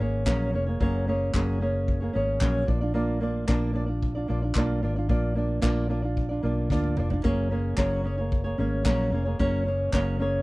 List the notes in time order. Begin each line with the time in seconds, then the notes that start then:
0.00 G#1 A#3 C#4 G#4 C#5
0.25 A#1 F#3 A#3 C#4 G#4 C#5, kick, clap
0.53 F1 A#3 C#4 G#4 C#5
0.66 A#3 G#4 C#5
0.80 F#1 F#3 A#3 C#4 G#4 C#5, kick
1.07 A#3 C#4 G#4 C#5
1.34 F#1 F#3 A#3 C#4 G#4 C#5, kick, clap
1.61 A#3 C#4 G#4 C#5
1.88 kick
2.00 A#3 G#4 C#5
2.13 G#1 A#3 C#4 G#4 C#5
2.41 A#1 F#3 A#3 C#4 G#4 C#5, kick, clap
2.67 A#1 A#3 D4 F4 D5, kick
2.81 D4 F4 D5
2.94 A#3 D4 F4 D5
3.20 A#3 D4 F4 D5
3.47 A#1 A#3 D4 F4 D5, kick, clap
3.73 A#3 D4 F4 D5
3.86 D4 F4 D5
4.03 kick
4.15 D4 F4 D5
4.28 A#1 A#3 D4 F4 D5
4.42 D4 F4 D5
4.55 B1 A#3 D4 F4 D5, kick, clap
4.83 G#1 A#3 D4 F4 D5
4.96 D4 F4 D5
5.09 A#1 A#3 D4 F4 D5, kick
5.35 A#3 D4 F4 D5
5.61 A#1 A#3 D4 F4 D5, kick, clap
5.89 A#3 D4 F4 D5
6.02 D4 F4 D5
6.17 kick
6.29 D4 F4 D5
6.43 B1 A#3 D4 F4 D5
6.70 D2 A#3 D4 F4 D5, kick, snare
6.84 high tom
6.97 F1 A#3 D4 F4 D5, mid tom
7.10 D4 F4 D5, floor tom
7.23 F#1 F#3 A#3 C#4 G#4 C#5, kick
7.50 A#3 C#4 G#4 C#5
7.77 F#1 F#3 A#3 C#4 G#4 C#5, kick, clap
8.04 A#3 C#4 G#4 C#5
8.18 A#3 G#4 C#5
8.32 kick
8.44 A#3 G#4 C#5
8.58 G#1 A#3 C#4 G#4 C#5
8.85 A#1 F#3 A#3 C#4 G#4 C#5, kick, clap
9.12 F1 A#3 C#4 G#4 C#5
9.25 A#3 G#4 C#5
9.39 F#1 F#3 A#3 C#4 G#4 C#5, kick
9.66 A#3 C#4 G#4 C#5
9.93 F#1 F#3 A#3 C#4 G#4 C#5, kick, clap
10.19 A#3 C#4 G#4 C#5